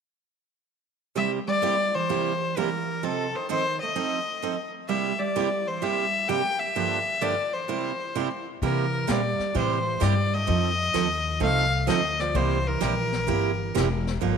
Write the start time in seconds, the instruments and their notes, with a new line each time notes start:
1.15 steel-string acoustic guitar C3 G3 A#3 E4 G4, hollow-body jazz guitar G3, fiddle E5
1.48 hollow-body jazz guitar G3, fiddle D5
1.62 steel-string acoustic guitar C3 G3 A#3 E4 G4
1.95 hollow-body jazz guitar E3, fiddle C5
2.09 steel-string acoustic guitar C3 G3 A#3 E4 G4
2.57 steel-string acoustic guitar C3 G3 A#3 E4 G4, hollow-body jazz guitar E3, fiddle A#4
3.03 hollow-body jazz guitar C3, steel-string acoustic guitar F3 C4 D#4 A4, fiddle A4
3.35 hollow-body jazz guitar D#3, fiddle C5
3.49 hollow-body jazz guitar D#3, steel-string acoustic guitar F3 C4 D#4 A4, fiddle C5
3.80 hollow-body jazz guitar A3, fiddle D#5
3.96 steel-string acoustic guitar F3 C4 D#4 A4
4.42 steel-string acoustic guitar F3 C4 D#4 A4
4.88 steel-string acoustic guitar C3 G3 A#3 E4 G4, hollow-body jazz guitar G3, fiddle E5
5.19 hollow-body jazz guitar G3, fiddle D5
5.36 steel-string acoustic guitar C3 G3 A#3 E4 G4
5.66 hollow-body jazz guitar E3, fiddle C5
5.82 steel-string acoustic guitar C3 G3 A#3 E4 G4, hollow-body jazz guitar G3, fiddle E5
6.28 steel-string acoustic guitar C3 G3 A#3 E4 G4, hollow-body jazz guitar A#3, fiddle G5
6.59 hollow-body jazz guitar G3, fiddle E5
6.75 steel-string acoustic guitar G2 D3 F3 A#3 D4 G4
7.21 steel-string acoustic guitar G2 D3 F3 A#3 D4 G4, hollow-body jazz guitar F3, fiddle D5
7.53 hollow-body jazz guitar E3, fiddle C5
7.68 steel-string acoustic guitar C3 G3 A#3 E4 G4
8.15 steel-string acoustic guitar C3 G3 A#3 E4 G4
8.62 upright bass C3, steel-string acoustic guitar C3 G3 A#3 E4 G4, hollow-body jazz guitar E3, fiddle A#4, brush sweep, kick
9.07 upright bass A#2, steel-string acoustic guitar C3 G3 A#3 E4 G4, hollow-body jazz guitar G3, fiddle D5, snare, hi-hat pedal
9.39 muted upright bass stroke, snare
9.55 upright bass A2, steel-string acoustic guitar C3 G3 A#3 E4 G4, hollow-body jazz guitar E3, fiddle C5, brush sweep, kick
10.00 upright bass G2, steel-string acoustic guitar C3 G3 A#3 E4 G4, hollow-body jazz guitar G3, fiddle D5, snare, hi-hat pedal
10.34 hollow-body jazz guitar A3, fiddle D#5
10.47 upright bass F2, steel-string acoustic guitar F3 C4 D#4 A4, brush sweep, kick
10.94 upright bass D#2, steel-string acoustic guitar F3 C4 D#4 A4, snare, hi-hat pedal
11.40 upright bass C2, steel-string acoustic guitar F3 C4 D#4 A4, hollow-body jazz guitar A3, fiddle F5, brush sweep, kick
11.87 upright bass D2, steel-string acoustic guitar F3 C4 D#4 A4, hollow-body jazz guitar A3, fiddle D#5, snare, hi-hat pedal
12.19 hollow-body jazz guitar F3, fiddle D5, snare
12.34 upright bass C2, steel-string acoustic guitar C3 G3 A#3 E4 G4, hollow-body jazz guitar E3, fiddle C5, brush sweep, kick
12.68 hollow-body jazz guitar E3, fiddle A#4
12.80 upright bass A#1, steel-string acoustic guitar C3 G3 A#3 E4 G4, snare, hi-hat pedal
13.12 snare
13.27 upright bass G1, steel-string acoustic guitar C3 G3 A#3 E4 G4, brush sweep, kick
13.75 upright bass E1, steel-string acoustic guitar C3 G3 A#3 E4 G4, snare, hi-hat pedal
14.07 snare
14.21 upright bass G1, steel-string acoustic guitar D3 F3 A#3 D4 G4, brush sweep, kick